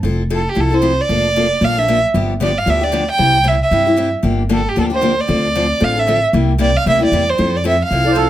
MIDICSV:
0, 0, Header, 1, 5, 480
1, 0, Start_track
1, 0, Key_signature, -1, "major"
1, 0, Tempo, 262352
1, 66, Time_signature, 4, 2, 24, 8
1, 15180, End_track
2, 0, Start_track
2, 0, Title_t, "Violin"
2, 0, Program_c, 0, 40
2, 645, Note_on_c, 0, 69, 73
2, 897, Note_on_c, 0, 67, 74
2, 925, Note_off_c, 0, 69, 0
2, 1109, Note_on_c, 0, 69, 74
2, 1136, Note_off_c, 0, 67, 0
2, 1357, Note_on_c, 0, 72, 83
2, 1385, Note_off_c, 0, 69, 0
2, 1844, Note_on_c, 0, 74, 92
2, 1872, Note_off_c, 0, 72, 0
2, 3004, Note_on_c, 0, 77, 86
2, 3032, Note_off_c, 0, 74, 0
2, 3267, Note_on_c, 0, 76, 85
2, 3295, Note_off_c, 0, 77, 0
2, 3725, Note_off_c, 0, 76, 0
2, 4445, Note_on_c, 0, 74, 78
2, 4728, Note_on_c, 0, 77, 87
2, 4755, Note_off_c, 0, 74, 0
2, 4934, Note_on_c, 0, 76, 81
2, 4961, Note_off_c, 0, 77, 0
2, 5188, Note_on_c, 0, 74, 88
2, 5216, Note_off_c, 0, 76, 0
2, 5647, Note_off_c, 0, 74, 0
2, 5688, Note_on_c, 0, 79, 102
2, 6360, Note_on_c, 0, 76, 85
2, 6388, Note_off_c, 0, 79, 0
2, 6608, Note_off_c, 0, 76, 0
2, 6634, Note_on_c, 0, 76, 80
2, 7505, Note_off_c, 0, 76, 0
2, 8292, Note_on_c, 0, 69, 70
2, 8576, Note_on_c, 0, 67, 75
2, 8604, Note_off_c, 0, 69, 0
2, 8752, Note_off_c, 0, 67, 0
2, 8771, Note_on_c, 0, 69, 65
2, 8880, Note_off_c, 0, 69, 0
2, 9027, Note_on_c, 0, 72, 82
2, 9519, Note_on_c, 0, 74, 89
2, 9547, Note_off_c, 0, 72, 0
2, 10685, Note_on_c, 0, 77, 90
2, 10712, Note_off_c, 0, 74, 0
2, 10963, Note_on_c, 0, 76, 92
2, 10990, Note_off_c, 0, 77, 0
2, 11414, Note_off_c, 0, 76, 0
2, 12100, Note_on_c, 0, 74, 80
2, 12379, Note_on_c, 0, 77, 97
2, 12406, Note_off_c, 0, 74, 0
2, 12572, Note_off_c, 0, 77, 0
2, 12605, Note_on_c, 0, 76, 90
2, 12832, Note_off_c, 0, 76, 0
2, 12889, Note_on_c, 0, 74, 92
2, 13344, Note_on_c, 0, 72, 83
2, 13372, Note_off_c, 0, 74, 0
2, 13839, Note_on_c, 0, 74, 79
2, 13866, Note_off_c, 0, 72, 0
2, 14020, Note_off_c, 0, 74, 0
2, 14043, Note_on_c, 0, 76, 81
2, 14269, Note_off_c, 0, 76, 0
2, 14342, Note_on_c, 0, 77, 82
2, 15180, Note_off_c, 0, 77, 0
2, 15180, End_track
3, 0, Start_track
3, 0, Title_t, "Accordion"
3, 0, Program_c, 1, 21
3, 14752, Note_on_c, 1, 74, 87
3, 14844, Note_off_c, 1, 74, 0
3, 14855, Note_on_c, 1, 72, 80
3, 14927, Note_on_c, 1, 69, 71
3, 14958, Note_off_c, 1, 72, 0
3, 15180, Note_off_c, 1, 69, 0
3, 15180, End_track
4, 0, Start_track
4, 0, Title_t, "Steel-string acoustic guitar"
4, 0, Program_c, 2, 25
4, 55, Note_on_c, 2, 53, 59
4, 57, Note_on_c, 2, 60, 60
4, 82, Note_on_c, 2, 64, 62
4, 84, Note_on_c, 2, 69, 72
4, 393, Note_off_c, 2, 53, 0
4, 394, Note_off_c, 2, 60, 0
4, 406, Note_off_c, 2, 64, 0
4, 407, Note_off_c, 2, 69, 0
4, 554, Note_on_c, 2, 53, 74
4, 556, Note_on_c, 2, 60, 77
4, 558, Note_on_c, 2, 64, 75
4, 560, Note_on_c, 2, 69, 83
4, 735, Note_off_c, 2, 53, 0
4, 736, Note_off_c, 2, 60, 0
4, 737, Note_off_c, 2, 64, 0
4, 738, Note_off_c, 2, 69, 0
4, 1002, Note_on_c, 2, 53, 57
4, 1011, Note_on_c, 2, 60, 61
4, 1029, Note_on_c, 2, 64, 65
4, 1032, Note_on_c, 2, 69, 62
4, 1267, Note_off_c, 2, 69, 0
4, 1273, Note_off_c, 2, 53, 0
4, 1278, Note_off_c, 2, 60, 0
4, 1286, Note_off_c, 2, 64, 0
4, 1289, Note_on_c, 2, 69, 51
4, 1318, Note_on_c, 2, 64, 47
4, 1335, Note_on_c, 2, 60, 44
4, 1478, Note_off_c, 2, 60, 0
4, 1485, Note_off_c, 2, 64, 0
4, 1495, Note_off_c, 2, 69, 0
4, 1495, Note_on_c, 2, 53, 77
4, 1500, Note_on_c, 2, 60, 73
4, 1506, Note_on_c, 2, 64, 86
4, 1517, Note_on_c, 2, 69, 79
4, 1687, Note_off_c, 2, 53, 0
4, 1689, Note_off_c, 2, 60, 0
4, 1692, Note_off_c, 2, 64, 0
4, 1698, Note_off_c, 2, 69, 0
4, 1995, Note_on_c, 2, 53, 62
4, 2001, Note_on_c, 2, 58, 55
4, 2014, Note_on_c, 2, 62, 66
4, 2020, Note_on_c, 2, 69, 67
4, 2324, Note_off_c, 2, 53, 0
4, 2327, Note_off_c, 2, 58, 0
4, 2334, Note_off_c, 2, 62, 0
4, 2336, Note_off_c, 2, 69, 0
4, 2492, Note_on_c, 2, 53, 78
4, 2494, Note_on_c, 2, 58, 84
4, 2506, Note_on_c, 2, 62, 85
4, 2520, Note_on_c, 2, 69, 78
4, 2666, Note_off_c, 2, 53, 0
4, 2667, Note_off_c, 2, 58, 0
4, 2673, Note_off_c, 2, 62, 0
4, 2680, Note_off_c, 2, 69, 0
4, 2943, Note_on_c, 2, 53, 56
4, 2959, Note_on_c, 2, 58, 59
4, 2964, Note_on_c, 2, 69, 66
4, 2969, Note_on_c, 2, 62, 72
4, 3206, Note_off_c, 2, 53, 0
4, 3214, Note_off_c, 2, 58, 0
4, 3216, Note_off_c, 2, 69, 0
4, 3218, Note_off_c, 2, 62, 0
4, 3239, Note_on_c, 2, 69, 50
4, 3261, Note_on_c, 2, 62, 49
4, 3274, Note_on_c, 2, 58, 43
4, 3424, Note_off_c, 2, 58, 0
4, 3431, Note_off_c, 2, 62, 0
4, 3432, Note_off_c, 2, 69, 0
4, 3446, Note_on_c, 2, 53, 72
4, 3446, Note_on_c, 2, 58, 83
4, 3453, Note_on_c, 2, 62, 78
4, 3465, Note_on_c, 2, 69, 81
4, 3624, Note_off_c, 2, 53, 0
4, 3624, Note_off_c, 2, 58, 0
4, 3627, Note_off_c, 2, 62, 0
4, 3633, Note_off_c, 2, 69, 0
4, 3925, Note_on_c, 2, 53, 62
4, 3930, Note_on_c, 2, 50, 61
4, 3936, Note_on_c, 2, 59, 67
4, 3939, Note_on_c, 2, 62, 72
4, 3945, Note_on_c, 2, 67, 75
4, 4251, Note_off_c, 2, 53, 0
4, 4253, Note_off_c, 2, 50, 0
4, 4256, Note_off_c, 2, 59, 0
4, 4258, Note_off_c, 2, 62, 0
4, 4261, Note_off_c, 2, 67, 0
4, 4392, Note_on_c, 2, 50, 82
4, 4405, Note_on_c, 2, 59, 89
4, 4406, Note_on_c, 2, 53, 83
4, 4430, Note_on_c, 2, 62, 84
4, 4434, Note_on_c, 2, 67, 84
4, 4577, Note_off_c, 2, 50, 0
4, 4584, Note_off_c, 2, 59, 0
4, 4585, Note_off_c, 2, 53, 0
4, 4597, Note_off_c, 2, 62, 0
4, 4599, Note_off_c, 2, 67, 0
4, 4870, Note_on_c, 2, 50, 62
4, 4885, Note_on_c, 2, 53, 62
4, 4888, Note_on_c, 2, 62, 77
4, 4897, Note_on_c, 2, 59, 76
4, 4905, Note_on_c, 2, 67, 71
4, 5119, Note_off_c, 2, 67, 0
4, 5131, Note_off_c, 2, 50, 0
4, 5138, Note_off_c, 2, 53, 0
4, 5140, Note_off_c, 2, 62, 0
4, 5141, Note_on_c, 2, 67, 56
4, 5144, Note_off_c, 2, 59, 0
4, 5174, Note_on_c, 2, 62, 48
4, 5189, Note_on_c, 2, 59, 43
4, 5334, Note_off_c, 2, 59, 0
4, 5341, Note_on_c, 2, 50, 81
4, 5342, Note_off_c, 2, 62, 0
4, 5345, Note_off_c, 2, 67, 0
4, 5347, Note_on_c, 2, 53, 78
4, 5356, Note_on_c, 2, 59, 73
4, 5364, Note_on_c, 2, 62, 83
4, 5370, Note_on_c, 2, 67, 93
4, 5533, Note_off_c, 2, 50, 0
4, 5536, Note_off_c, 2, 53, 0
4, 5541, Note_off_c, 2, 59, 0
4, 5545, Note_off_c, 2, 62, 0
4, 5548, Note_off_c, 2, 67, 0
4, 5815, Note_on_c, 2, 48, 62
4, 5818, Note_on_c, 2, 55, 65
4, 5824, Note_on_c, 2, 60, 63
4, 5829, Note_on_c, 2, 64, 69
4, 5836, Note_on_c, 2, 67, 64
4, 6158, Note_off_c, 2, 48, 0
4, 6159, Note_off_c, 2, 55, 0
4, 6162, Note_off_c, 2, 60, 0
4, 6164, Note_off_c, 2, 64, 0
4, 6168, Note_off_c, 2, 67, 0
4, 6283, Note_on_c, 2, 55, 70
4, 6289, Note_on_c, 2, 48, 75
4, 6299, Note_on_c, 2, 60, 81
4, 6301, Note_on_c, 2, 64, 85
4, 6305, Note_on_c, 2, 67, 84
4, 6485, Note_off_c, 2, 55, 0
4, 6488, Note_off_c, 2, 48, 0
4, 6493, Note_off_c, 2, 60, 0
4, 6494, Note_off_c, 2, 64, 0
4, 6496, Note_off_c, 2, 67, 0
4, 6795, Note_on_c, 2, 48, 59
4, 6799, Note_on_c, 2, 55, 67
4, 6816, Note_on_c, 2, 60, 67
4, 6819, Note_on_c, 2, 64, 65
4, 6819, Note_on_c, 2, 67, 69
4, 7051, Note_off_c, 2, 67, 0
4, 7054, Note_off_c, 2, 48, 0
4, 7057, Note_off_c, 2, 55, 0
4, 7062, Note_off_c, 2, 64, 0
4, 7065, Note_off_c, 2, 60, 0
4, 7073, Note_on_c, 2, 67, 52
4, 7084, Note_on_c, 2, 64, 49
4, 7109, Note_on_c, 2, 60, 48
4, 7245, Note_off_c, 2, 60, 0
4, 7255, Note_on_c, 2, 48, 69
4, 7258, Note_off_c, 2, 67, 0
4, 7264, Note_off_c, 2, 64, 0
4, 7267, Note_on_c, 2, 60, 78
4, 7270, Note_on_c, 2, 55, 69
4, 7280, Note_on_c, 2, 67, 90
4, 7286, Note_on_c, 2, 64, 79
4, 7451, Note_off_c, 2, 48, 0
4, 7457, Note_off_c, 2, 60, 0
4, 7459, Note_off_c, 2, 55, 0
4, 7463, Note_off_c, 2, 67, 0
4, 7467, Note_off_c, 2, 64, 0
4, 7731, Note_on_c, 2, 50, 60
4, 7737, Note_on_c, 2, 53, 65
4, 7749, Note_on_c, 2, 62, 65
4, 7753, Note_on_c, 2, 58, 65
4, 7758, Note_on_c, 2, 67, 66
4, 8076, Note_off_c, 2, 50, 0
4, 8080, Note_off_c, 2, 53, 0
4, 8086, Note_off_c, 2, 62, 0
4, 8087, Note_off_c, 2, 58, 0
4, 8090, Note_off_c, 2, 67, 0
4, 8219, Note_on_c, 2, 50, 79
4, 8224, Note_on_c, 2, 58, 81
4, 8228, Note_on_c, 2, 53, 72
4, 8231, Note_on_c, 2, 62, 87
4, 8243, Note_on_c, 2, 67, 82
4, 8413, Note_off_c, 2, 50, 0
4, 8416, Note_off_c, 2, 58, 0
4, 8418, Note_off_c, 2, 53, 0
4, 8419, Note_off_c, 2, 62, 0
4, 8425, Note_off_c, 2, 67, 0
4, 8706, Note_on_c, 2, 50, 59
4, 8711, Note_on_c, 2, 53, 69
4, 8720, Note_on_c, 2, 58, 66
4, 8733, Note_on_c, 2, 62, 70
4, 8733, Note_on_c, 2, 67, 71
4, 8941, Note_off_c, 2, 67, 0
4, 8954, Note_off_c, 2, 62, 0
4, 8963, Note_on_c, 2, 67, 53
4, 8966, Note_off_c, 2, 58, 0
4, 8971, Note_off_c, 2, 50, 0
4, 8973, Note_off_c, 2, 53, 0
4, 8976, Note_on_c, 2, 62, 47
4, 8988, Note_on_c, 2, 58, 46
4, 9171, Note_on_c, 2, 50, 77
4, 9172, Note_off_c, 2, 67, 0
4, 9175, Note_off_c, 2, 58, 0
4, 9176, Note_off_c, 2, 62, 0
4, 9185, Note_on_c, 2, 53, 81
4, 9194, Note_on_c, 2, 67, 75
4, 9197, Note_on_c, 2, 58, 78
4, 9198, Note_on_c, 2, 62, 85
4, 9370, Note_off_c, 2, 50, 0
4, 9377, Note_off_c, 2, 53, 0
4, 9381, Note_off_c, 2, 67, 0
4, 9382, Note_off_c, 2, 58, 0
4, 9383, Note_off_c, 2, 62, 0
4, 9652, Note_on_c, 2, 50, 59
4, 9660, Note_on_c, 2, 53, 65
4, 9670, Note_on_c, 2, 60, 65
4, 9679, Note_on_c, 2, 62, 62
4, 9682, Note_on_c, 2, 69, 67
4, 9997, Note_off_c, 2, 50, 0
4, 10001, Note_off_c, 2, 53, 0
4, 10006, Note_off_c, 2, 60, 0
4, 10010, Note_off_c, 2, 62, 0
4, 10012, Note_off_c, 2, 69, 0
4, 10161, Note_on_c, 2, 50, 81
4, 10164, Note_on_c, 2, 53, 89
4, 10177, Note_on_c, 2, 60, 88
4, 10179, Note_on_c, 2, 69, 89
4, 10186, Note_on_c, 2, 62, 84
4, 10344, Note_off_c, 2, 50, 0
4, 10345, Note_off_c, 2, 53, 0
4, 10352, Note_off_c, 2, 60, 0
4, 10353, Note_off_c, 2, 69, 0
4, 10357, Note_off_c, 2, 62, 0
4, 10612, Note_on_c, 2, 50, 64
4, 10622, Note_on_c, 2, 53, 65
4, 10626, Note_on_c, 2, 60, 72
4, 10626, Note_on_c, 2, 69, 72
4, 10630, Note_on_c, 2, 62, 74
4, 10875, Note_off_c, 2, 69, 0
4, 10883, Note_off_c, 2, 50, 0
4, 10888, Note_off_c, 2, 53, 0
4, 10890, Note_off_c, 2, 60, 0
4, 10892, Note_off_c, 2, 62, 0
4, 10897, Note_on_c, 2, 69, 54
4, 10928, Note_on_c, 2, 62, 48
4, 10941, Note_on_c, 2, 60, 45
4, 11102, Note_on_c, 2, 50, 74
4, 11104, Note_off_c, 2, 60, 0
4, 11104, Note_off_c, 2, 69, 0
4, 11113, Note_on_c, 2, 53, 76
4, 11114, Note_off_c, 2, 62, 0
4, 11126, Note_on_c, 2, 60, 80
4, 11136, Note_on_c, 2, 62, 81
4, 11136, Note_on_c, 2, 69, 81
4, 11294, Note_off_c, 2, 50, 0
4, 11300, Note_off_c, 2, 53, 0
4, 11306, Note_off_c, 2, 60, 0
4, 11311, Note_off_c, 2, 62, 0
4, 11311, Note_off_c, 2, 69, 0
4, 11589, Note_on_c, 2, 48, 66
4, 11596, Note_on_c, 2, 58, 68
4, 11596, Note_on_c, 2, 64, 65
4, 11604, Note_on_c, 2, 55, 66
4, 11605, Note_on_c, 2, 67, 65
4, 11924, Note_off_c, 2, 48, 0
4, 11928, Note_off_c, 2, 58, 0
4, 11928, Note_off_c, 2, 64, 0
4, 11932, Note_off_c, 2, 55, 0
4, 11932, Note_off_c, 2, 67, 0
4, 12046, Note_on_c, 2, 48, 83
4, 12052, Note_on_c, 2, 58, 85
4, 12054, Note_on_c, 2, 55, 84
4, 12060, Note_on_c, 2, 67, 85
4, 12072, Note_on_c, 2, 64, 91
4, 12245, Note_off_c, 2, 48, 0
4, 12248, Note_off_c, 2, 58, 0
4, 12250, Note_off_c, 2, 55, 0
4, 12253, Note_off_c, 2, 67, 0
4, 12259, Note_off_c, 2, 64, 0
4, 12551, Note_on_c, 2, 55, 63
4, 12564, Note_on_c, 2, 48, 68
4, 12569, Note_on_c, 2, 67, 72
4, 12570, Note_on_c, 2, 58, 71
4, 12576, Note_on_c, 2, 64, 73
4, 12768, Note_off_c, 2, 67, 0
4, 12790, Note_on_c, 2, 67, 55
4, 12793, Note_off_c, 2, 64, 0
4, 12805, Note_off_c, 2, 58, 0
4, 12811, Note_off_c, 2, 55, 0
4, 12815, Note_on_c, 2, 64, 53
4, 12817, Note_off_c, 2, 48, 0
4, 12827, Note_on_c, 2, 58, 46
4, 13009, Note_off_c, 2, 67, 0
4, 13021, Note_off_c, 2, 64, 0
4, 13027, Note_off_c, 2, 58, 0
4, 13027, Note_on_c, 2, 48, 73
4, 13038, Note_on_c, 2, 55, 78
4, 13047, Note_on_c, 2, 58, 78
4, 13050, Note_on_c, 2, 64, 80
4, 13050, Note_on_c, 2, 67, 89
4, 13215, Note_off_c, 2, 48, 0
4, 13221, Note_off_c, 2, 55, 0
4, 13225, Note_off_c, 2, 58, 0
4, 13226, Note_off_c, 2, 64, 0
4, 13227, Note_off_c, 2, 67, 0
4, 13497, Note_on_c, 2, 53, 60
4, 13508, Note_on_c, 2, 60, 61
4, 13511, Note_on_c, 2, 64, 67
4, 13517, Note_on_c, 2, 69, 67
4, 13836, Note_off_c, 2, 53, 0
4, 13841, Note_off_c, 2, 60, 0
4, 13843, Note_off_c, 2, 64, 0
4, 13846, Note_off_c, 2, 69, 0
4, 13976, Note_on_c, 2, 53, 82
4, 13995, Note_on_c, 2, 64, 83
4, 13996, Note_on_c, 2, 60, 83
4, 14001, Note_on_c, 2, 69, 91
4, 14168, Note_off_c, 2, 53, 0
4, 14178, Note_off_c, 2, 60, 0
4, 14178, Note_off_c, 2, 64, 0
4, 14181, Note_off_c, 2, 69, 0
4, 14478, Note_on_c, 2, 53, 60
4, 14490, Note_on_c, 2, 60, 56
4, 14495, Note_on_c, 2, 64, 72
4, 14508, Note_on_c, 2, 69, 65
4, 14692, Note_off_c, 2, 69, 0
4, 14714, Note_on_c, 2, 69, 55
4, 14717, Note_off_c, 2, 64, 0
4, 14732, Note_off_c, 2, 53, 0
4, 14738, Note_off_c, 2, 60, 0
4, 14739, Note_on_c, 2, 64, 46
4, 14764, Note_on_c, 2, 60, 42
4, 14894, Note_off_c, 2, 64, 0
4, 14905, Note_off_c, 2, 60, 0
4, 14908, Note_off_c, 2, 69, 0
4, 14914, Note_on_c, 2, 53, 79
4, 14915, Note_on_c, 2, 64, 74
4, 14927, Note_on_c, 2, 60, 78
4, 14930, Note_on_c, 2, 69, 88
4, 15116, Note_off_c, 2, 53, 0
4, 15117, Note_off_c, 2, 64, 0
4, 15122, Note_off_c, 2, 60, 0
4, 15124, Note_off_c, 2, 69, 0
4, 15180, End_track
5, 0, Start_track
5, 0, Title_t, "Upright bass"
5, 0, Program_c, 3, 32
5, 52, Note_on_c, 3, 29, 80
5, 826, Note_off_c, 3, 29, 0
5, 1028, Note_on_c, 3, 36, 66
5, 1796, Note_off_c, 3, 36, 0
5, 1994, Note_on_c, 3, 29, 80
5, 2761, Note_off_c, 3, 29, 0
5, 2945, Note_on_c, 3, 34, 74
5, 3716, Note_off_c, 3, 34, 0
5, 3918, Note_on_c, 3, 31, 88
5, 4685, Note_off_c, 3, 31, 0
5, 4866, Note_on_c, 3, 38, 69
5, 5638, Note_off_c, 3, 38, 0
5, 5835, Note_on_c, 3, 36, 78
5, 6604, Note_off_c, 3, 36, 0
5, 6788, Note_on_c, 3, 43, 70
5, 7560, Note_off_c, 3, 43, 0
5, 7739, Note_on_c, 3, 31, 85
5, 8515, Note_off_c, 3, 31, 0
5, 8724, Note_on_c, 3, 38, 67
5, 9489, Note_off_c, 3, 38, 0
5, 9671, Note_on_c, 3, 38, 85
5, 10441, Note_off_c, 3, 38, 0
5, 10633, Note_on_c, 3, 33, 71
5, 11402, Note_off_c, 3, 33, 0
5, 11583, Note_on_c, 3, 36, 89
5, 12355, Note_off_c, 3, 36, 0
5, 12549, Note_on_c, 3, 38, 77
5, 12959, Note_off_c, 3, 38, 0
5, 13018, Note_on_c, 3, 40, 76
5, 13432, Note_off_c, 3, 40, 0
5, 13519, Note_on_c, 3, 41, 80
5, 14283, Note_off_c, 3, 41, 0
5, 14464, Note_on_c, 3, 36, 70
5, 15180, Note_off_c, 3, 36, 0
5, 15180, End_track
0, 0, End_of_file